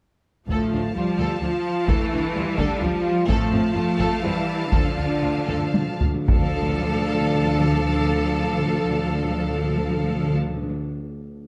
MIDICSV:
0, 0, Header, 1, 9, 480
1, 0, Start_track
1, 0, Key_signature, -1, "minor"
1, 0, Tempo, 466200
1, 503, Time_signature, 3, 2, 24, 8
1, 3865, Tempo, 491803
1, 5305, Tempo, 527704
1, 6265, Tempo, 546946
1, 10817, End_track
2, 0, Start_track
2, 0, Title_t, "Violin section"
2, 0, Program_c, 0, 48
2, 514, Note_on_c, 0, 81, 47
2, 3344, Note_off_c, 0, 81, 0
2, 3386, Note_on_c, 0, 81, 68
2, 6019, Note_off_c, 0, 81, 0
2, 6275, Note_on_c, 0, 81, 73
2, 9818, Note_off_c, 0, 81, 0
2, 10817, End_track
3, 0, Start_track
3, 0, Title_t, "Violin section"
3, 0, Program_c, 1, 48
3, 518, Note_on_c, 1, 77, 42
3, 523, Note_on_c, 1, 69, 52
3, 737, Note_off_c, 1, 69, 0
3, 751, Note_on_c, 1, 62, 35
3, 834, Note_off_c, 1, 62, 0
3, 994, Note_on_c, 1, 65, 38
3, 1076, Note_off_c, 1, 65, 0
3, 1227, Note_on_c, 1, 69, 55
3, 1448, Note_off_c, 1, 69, 0
3, 1457, Note_on_c, 1, 62, 45
3, 1539, Note_off_c, 1, 62, 0
3, 1940, Note_on_c, 1, 69, 56
3, 2163, Note_off_c, 1, 69, 0
3, 2189, Note_on_c, 1, 62, 50
3, 2271, Note_off_c, 1, 62, 0
3, 2423, Note_on_c, 1, 65, 56
3, 2505, Note_off_c, 1, 65, 0
3, 2658, Note_on_c, 1, 69, 62
3, 2881, Note_off_c, 1, 69, 0
3, 2903, Note_on_c, 1, 62, 58
3, 2985, Note_off_c, 1, 62, 0
3, 3346, Note_off_c, 1, 77, 0
3, 3381, Note_on_c, 1, 69, 76
3, 3384, Note_on_c, 1, 77, 65
3, 3606, Note_off_c, 1, 69, 0
3, 3623, Note_on_c, 1, 60, 51
3, 3705, Note_off_c, 1, 60, 0
3, 3870, Note_on_c, 1, 65, 51
3, 3948, Note_off_c, 1, 65, 0
3, 4094, Note_on_c, 1, 69, 65
3, 4316, Note_off_c, 1, 69, 0
3, 4330, Note_on_c, 1, 60, 58
3, 4408, Note_off_c, 1, 60, 0
3, 4806, Note_on_c, 1, 69, 55
3, 5037, Note_off_c, 1, 69, 0
3, 5057, Note_on_c, 1, 62, 39
3, 5135, Note_off_c, 1, 62, 0
3, 5302, Note_on_c, 1, 65, 44
3, 5375, Note_off_c, 1, 65, 0
3, 5527, Note_on_c, 1, 69, 51
3, 5754, Note_off_c, 1, 69, 0
3, 5766, Note_on_c, 1, 62, 48
3, 5839, Note_off_c, 1, 62, 0
3, 6018, Note_off_c, 1, 77, 0
3, 6271, Note_on_c, 1, 77, 68
3, 9816, Note_off_c, 1, 77, 0
3, 10817, End_track
4, 0, Start_track
4, 0, Title_t, "French horn section"
4, 0, Program_c, 2, 60
4, 502, Note_on_c, 2, 57, 61
4, 948, Note_off_c, 2, 57, 0
4, 975, Note_on_c, 2, 65, 65
4, 1439, Note_off_c, 2, 65, 0
4, 1451, Note_on_c, 2, 65, 79
4, 1925, Note_off_c, 2, 65, 0
4, 1935, Note_on_c, 2, 64, 90
4, 2652, Note_on_c, 2, 62, 88
4, 2656, Note_off_c, 2, 64, 0
4, 2888, Note_on_c, 2, 65, 96
4, 2895, Note_off_c, 2, 62, 0
4, 3373, Note_on_c, 2, 57, 89
4, 3375, Note_off_c, 2, 65, 0
4, 3863, Note_off_c, 2, 57, 0
4, 3867, Note_on_c, 2, 65, 78
4, 4331, Note_on_c, 2, 64, 84
4, 4336, Note_off_c, 2, 65, 0
4, 4812, Note_off_c, 2, 64, 0
4, 4835, Note_on_c, 2, 62, 74
4, 6005, Note_off_c, 2, 62, 0
4, 6267, Note_on_c, 2, 62, 88
4, 9814, Note_off_c, 2, 62, 0
4, 10817, End_track
5, 0, Start_track
5, 0, Title_t, "Viola section"
5, 0, Program_c, 3, 48
5, 498, Note_on_c, 3, 53, 49
5, 946, Note_off_c, 3, 53, 0
5, 970, Note_on_c, 3, 55, 51
5, 1445, Note_off_c, 3, 55, 0
5, 1459, Note_on_c, 3, 53, 57
5, 1934, Note_on_c, 3, 57, 67
5, 1939, Note_off_c, 3, 53, 0
5, 2416, Note_off_c, 3, 57, 0
5, 2418, Note_on_c, 3, 55, 68
5, 3379, Note_off_c, 3, 55, 0
5, 3380, Note_on_c, 3, 53, 68
5, 3857, Note_off_c, 3, 53, 0
5, 3866, Note_on_c, 3, 57, 69
5, 4335, Note_off_c, 3, 57, 0
5, 4337, Note_on_c, 3, 55, 63
5, 4812, Note_on_c, 3, 53, 57
5, 4815, Note_off_c, 3, 55, 0
5, 5994, Note_off_c, 3, 53, 0
5, 6269, Note_on_c, 3, 69, 75
5, 9815, Note_off_c, 3, 69, 0
5, 10817, End_track
6, 0, Start_track
6, 0, Title_t, "Cello section"
6, 0, Program_c, 4, 48
6, 501, Note_on_c, 4, 45, 47
6, 948, Note_off_c, 4, 45, 0
6, 985, Note_on_c, 4, 53, 61
6, 1453, Note_off_c, 4, 53, 0
6, 1465, Note_on_c, 4, 53, 61
6, 1933, Note_off_c, 4, 53, 0
6, 1943, Note_on_c, 4, 52, 70
6, 2660, Note_off_c, 4, 52, 0
6, 2660, Note_on_c, 4, 50, 73
6, 2899, Note_off_c, 4, 50, 0
6, 2905, Note_on_c, 4, 53, 75
6, 3383, Note_off_c, 4, 53, 0
6, 3391, Note_on_c, 4, 45, 70
6, 3863, Note_off_c, 4, 45, 0
6, 3874, Note_on_c, 4, 53, 78
6, 4330, Note_off_c, 4, 53, 0
6, 4337, Note_on_c, 4, 52, 69
6, 4809, Note_on_c, 4, 50, 60
6, 4815, Note_off_c, 4, 52, 0
6, 6016, Note_off_c, 4, 50, 0
6, 6261, Note_on_c, 4, 53, 67
6, 9811, Note_off_c, 4, 53, 0
6, 10817, End_track
7, 0, Start_track
7, 0, Title_t, "Timpani"
7, 0, Program_c, 5, 47
7, 497, Note_on_c, 5, 50, 56
7, 1178, Note_off_c, 5, 50, 0
7, 4816, Note_on_c, 5, 50, 30
7, 4876, Note_off_c, 5, 50, 0
7, 4887, Note_on_c, 5, 50, 32
7, 4951, Note_off_c, 5, 50, 0
7, 4962, Note_on_c, 5, 50, 35
7, 5029, Note_off_c, 5, 50, 0
7, 5041, Note_on_c, 5, 50, 36
7, 5104, Note_off_c, 5, 50, 0
7, 5116, Note_on_c, 5, 50, 39
7, 5181, Note_off_c, 5, 50, 0
7, 5193, Note_on_c, 5, 50, 38
7, 5263, Note_off_c, 5, 50, 0
7, 5275, Note_on_c, 5, 50, 40
7, 5337, Note_off_c, 5, 50, 0
7, 5430, Note_on_c, 5, 50, 51
7, 5493, Note_off_c, 5, 50, 0
7, 5504, Note_on_c, 5, 50, 56
7, 5573, Note_off_c, 5, 50, 0
7, 5584, Note_on_c, 5, 50, 57
7, 5651, Note_off_c, 5, 50, 0
7, 5662, Note_on_c, 5, 50, 63
7, 5731, Note_off_c, 5, 50, 0
7, 5742, Note_on_c, 5, 50, 68
7, 5801, Note_off_c, 5, 50, 0
7, 5812, Note_on_c, 5, 50, 75
7, 5877, Note_off_c, 5, 50, 0
7, 5888, Note_on_c, 5, 50, 74
7, 5955, Note_off_c, 5, 50, 0
7, 5966, Note_on_c, 5, 50, 77
7, 6033, Note_off_c, 5, 50, 0
7, 6044, Note_on_c, 5, 50, 90
7, 6124, Note_off_c, 5, 50, 0
7, 6135, Note_on_c, 5, 50, 95
7, 6210, Note_off_c, 5, 50, 0
7, 6254, Note_on_c, 5, 50, 80
7, 6312, Note_off_c, 5, 50, 0
7, 6316, Note_on_c, 5, 50, 78
7, 6374, Note_off_c, 5, 50, 0
7, 6376, Note_on_c, 5, 50, 76
7, 6434, Note_off_c, 5, 50, 0
7, 6440, Note_on_c, 5, 50, 69
7, 6497, Note_off_c, 5, 50, 0
7, 6497, Note_on_c, 5, 50, 78
7, 6554, Note_off_c, 5, 50, 0
7, 6555, Note_on_c, 5, 50, 81
7, 6613, Note_off_c, 5, 50, 0
7, 6614, Note_on_c, 5, 50, 81
7, 6671, Note_off_c, 5, 50, 0
7, 6671, Note_on_c, 5, 50, 75
7, 6728, Note_off_c, 5, 50, 0
7, 6728, Note_on_c, 5, 50, 82
7, 6786, Note_off_c, 5, 50, 0
7, 6790, Note_on_c, 5, 50, 74
7, 6847, Note_off_c, 5, 50, 0
7, 6847, Note_on_c, 5, 50, 81
7, 6905, Note_off_c, 5, 50, 0
7, 6906, Note_on_c, 5, 50, 75
7, 6962, Note_off_c, 5, 50, 0
7, 6962, Note_on_c, 5, 50, 85
7, 7019, Note_off_c, 5, 50, 0
7, 7019, Note_on_c, 5, 50, 72
7, 7077, Note_off_c, 5, 50, 0
7, 7078, Note_on_c, 5, 50, 79
7, 7136, Note_off_c, 5, 50, 0
7, 7141, Note_on_c, 5, 50, 79
7, 7195, Note_off_c, 5, 50, 0
7, 7195, Note_on_c, 5, 50, 83
7, 7252, Note_off_c, 5, 50, 0
7, 7253, Note_on_c, 5, 50, 78
7, 7307, Note_off_c, 5, 50, 0
7, 7307, Note_on_c, 5, 50, 82
7, 7365, Note_off_c, 5, 50, 0
7, 7366, Note_on_c, 5, 50, 79
7, 7424, Note_off_c, 5, 50, 0
7, 7425, Note_on_c, 5, 50, 84
7, 7483, Note_off_c, 5, 50, 0
7, 7483, Note_on_c, 5, 50, 74
7, 7538, Note_off_c, 5, 50, 0
7, 7538, Note_on_c, 5, 50, 74
7, 7596, Note_off_c, 5, 50, 0
7, 7598, Note_on_c, 5, 50, 70
7, 7656, Note_off_c, 5, 50, 0
7, 7656, Note_on_c, 5, 50, 76
7, 7710, Note_off_c, 5, 50, 0
7, 7710, Note_on_c, 5, 50, 72
7, 7766, Note_off_c, 5, 50, 0
7, 7766, Note_on_c, 5, 50, 81
7, 7821, Note_off_c, 5, 50, 0
7, 7821, Note_on_c, 5, 50, 72
7, 7879, Note_off_c, 5, 50, 0
7, 7881, Note_on_c, 5, 50, 79
7, 7937, Note_off_c, 5, 50, 0
7, 7937, Note_on_c, 5, 50, 77
7, 7993, Note_off_c, 5, 50, 0
7, 7993, Note_on_c, 5, 50, 70
7, 8051, Note_off_c, 5, 50, 0
7, 8052, Note_on_c, 5, 50, 68
7, 8110, Note_off_c, 5, 50, 0
7, 8112, Note_on_c, 5, 50, 80
7, 8168, Note_off_c, 5, 50, 0
7, 8168, Note_on_c, 5, 50, 70
7, 8226, Note_off_c, 5, 50, 0
7, 8227, Note_on_c, 5, 50, 88
7, 8285, Note_off_c, 5, 50, 0
7, 8287, Note_on_c, 5, 50, 68
7, 8343, Note_off_c, 5, 50, 0
7, 8343, Note_on_c, 5, 50, 84
7, 8397, Note_off_c, 5, 50, 0
7, 8397, Note_on_c, 5, 50, 74
7, 8451, Note_off_c, 5, 50, 0
7, 8451, Note_on_c, 5, 50, 74
7, 8509, Note_off_c, 5, 50, 0
7, 8512, Note_on_c, 5, 50, 71
7, 8567, Note_off_c, 5, 50, 0
7, 8567, Note_on_c, 5, 50, 78
7, 8624, Note_off_c, 5, 50, 0
7, 8624, Note_on_c, 5, 50, 74
7, 8678, Note_off_c, 5, 50, 0
7, 8678, Note_on_c, 5, 50, 93
7, 8736, Note_off_c, 5, 50, 0
7, 8737, Note_on_c, 5, 50, 74
7, 8795, Note_off_c, 5, 50, 0
7, 8798, Note_on_c, 5, 50, 75
7, 8853, Note_off_c, 5, 50, 0
7, 8853, Note_on_c, 5, 50, 77
7, 8910, Note_off_c, 5, 50, 0
7, 8910, Note_on_c, 5, 50, 82
7, 8968, Note_off_c, 5, 50, 0
7, 8968, Note_on_c, 5, 50, 68
7, 9023, Note_off_c, 5, 50, 0
7, 9023, Note_on_c, 5, 50, 82
7, 9079, Note_off_c, 5, 50, 0
7, 9079, Note_on_c, 5, 50, 73
7, 9135, Note_off_c, 5, 50, 0
7, 9135, Note_on_c, 5, 50, 83
7, 9193, Note_off_c, 5, 50, 0
7, 9198, Note_on_c, 5, 50, 71
7, 9256, Note_off_c, 5, 50, 0
7, 9256, Note_on_c, 5, 50, 81
7, 9314, Note_off_c, 5, 50, 0
7, 9319, Note_on_c, 5, 50, 75
7, 9377, Note_off_c, 5, 50, 0
7, 9377, Note_on_c, 5, 50, 81
7, 9434, Note_off_c, 5, 50, 0
7, 9434, Note_on_c, 5, 50, 76
7, 9492, Note_off_c, 5, 50, 0
7, 9493, Note_on_c, 5, 50, 76
7, 9551, Note_off_c, 5, 50, 0
7, 9554, Note_on_c, 5, 50, 74
7, 9612, Note_off_c, 5, 50, 0
7, 9615, Note_on_c, 5, 50, 82
7, 9672, Note_off_c, 5, 50, 0
7, 9672, Note_on_c, 5, 50, 76
7, 9726, Note_off_c, 5, 50, 0
7, 9726, Note_on_c, 5, 50, 71
7, 9784, Note_off_c, 5, 50, 0
7, 9784, Note_on_c, 5, 50, 72
7, 9839, Note_off_c, 5, 50, 0
7, 9839, Note_on_c, 5, 50, 88
7, 9894, Note_off_c, 5, 50, 0
7, 9894, Note_on_c, 5, 50, 73
7, 9952, Note_off_c, 5, 50, 0
7, 9954, Note_on_c, 5, 50, 79
7, 10012, Note_off_c, 5, 50, 0
7, 10016, Note_on_c, 5, 50, 71
7, 10074, Note_off_c, 5, 50, 0
7, 10077, Note_on_c, 5, 50, 77
7, 10134, Note_off_c, 5, 50, 0
7, 10135, Note_on_c, 5, 50, 83
7, 10193, Note_off_c, 5, 50, 0
7, 10817, End_track
8, 0, Start_track
8, 0, Title_t, "Double bass section"
8, 0, Program_c, 6, 48
8, 498, Note_on_c, 6, 38, 55
8, 581, Note_off_c, 6, 38, 0
8, 739, Note_on_c, 6, 38, 41
8, 822, Note_off_c, 6, 38, 0
8, 986, Note_on_c, 6, 38, 40
8, 1068, Note_off_c, 6, 38, 0
8, 1221, Note_on_c, 6, 38, 60
8, 1303, Note_off_c, 6, 38, 0
8, 1456, Note_on_c, 6, 38, 43
8, 1539, Note_off_c, 6, 38, 0
8, 1943, Note_on_c, 6, 38, 68
8, 2025, Note_off_c, 6, 38, 0
8, 2189, Note_on_c, 6, 38, 53
8, 2271, Note_off_c, 6, 38, 0
8, 2428, Note_on_c, 6, 38, 52
8, 2511, Note_off_c, 6, 38, 0
8, 2667, Note_on_c, 6, 38, 68
8, 2750, Note_off_c, 6, 38, 0
8, 2900, Note_on_c, 6, 38, 50
8, 2982, Note_off_c, 6, 38, 0
8, 3387, Note_on_c, 6, 41, 76
8, 3470, Note_off_c, 6, 41, 0
8, 3620, Note_on_c, 6, 41, 55
8, 3702, Note_off_c, 6, 41, 0
8, 3860, Note_on_c, 6, 41, 54
8, 3939, Note_off_c, 6, 41, 0
8, 4099, Note_on_c, 6, 41, 70
8, 4177, Note_off_c, 6, 41, 0
8, 4335, Note_on_c, 6, 41, 49
8, 4413, Note_off_c, 6, 41, 0
8, 4808, Note_on_c, 6, 38, 60
8, 4886, Note_off_c, 6, 38, 0
8, 5050, Note_on_c, 6, 38, 42
8, 5128, Note_off_c, 6, 38, 0
8, 5293, Note_on_c, 6, 38, 45
8, 5367, Note_off_c, 6, 38, 0
8, 5527, Note_on_c, 6, 38, 61
8, 5600, Note_off_c, 6, 38, 0
8, 5769, Note_on_c, 6, 38, 42
8, 5842, Note_off_c, 6, 38, 0
8, 6257, Note_on_c, 6, 38, 76
8, 9809, Note_off_c, 6, 38, 0
8, 10817, End_track
9, 0, Start_track
9, 0, Title_t, "Taiko and cinematic ensemble drums"
9, 501, Note_on_c, 9, 41, 53
9, 604, Note_off_c, 9, 41, 0
9, 1938, Note_on_c, 9, 41, 85
9, 2041, Note_off_c, 9, 41, 0
9, 2662, Note_on_c, 9, 41, 79
9, 2765, Note_off_c, 9, 41, 0
9, 3381, Note_on_c, 9, 41, 91
9, 3484, Note_off_c, 9, 41, 0
9, 4102, Note_on_c, 9, 41, 75
9, 4199, Note_off_c, 9, 41, 0
9, 4810, Note_on_c, 9, 41, 90
9, 4907, Note_off_c, 9, 41, 0
9, 5537, Note_on_c, 9, 45, 73
9, 5628, Note_off_c, 9, 45, 0
9, 5772, Note_on_c, 9, 48, 80
9, 5863, Note_off_c, 9, 48, 0
9, 6013, Note_on_c, 9, 43, 90
9, 6104, Note_off_c, 9, 43, 0
9, 6264, Note_on_c, 9, 41, 102
9, 6352, Note_off_c, 9, 41, 0
9, 10817, End_track
0, 0, End_of_file